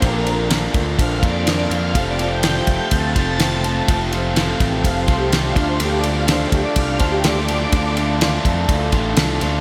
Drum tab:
RD |xxxxxxxx|xxxxxxxx|xxxxxxxx|xxxxxxxx|
SD |--o---o-|--o---o-|--o---o-|--o---o-|
BD |o--ooo--|o--ooo--|o--ooo-o|---ooo--|

RD |xxxxxxxx|
SD |--o---o-|
BD |o--ooo--|